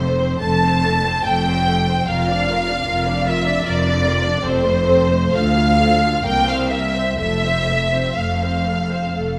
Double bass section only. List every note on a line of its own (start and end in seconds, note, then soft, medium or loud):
0.00 0.31 F1 medium
0.41 1.16 F1 medium
1.26 2.00 F1 medium
2.09 2.79 F1 medium
2.88 3.57 F1 medium
3.66 4.35 F1 medium
4.45 5.25 F1 medium
5.35 6.15 D2 medium
6.26 7.09 C2 medium
7.21 8.06 F1 medium
8.17 9.04 F1 medium
9.16 9.39 F1 medium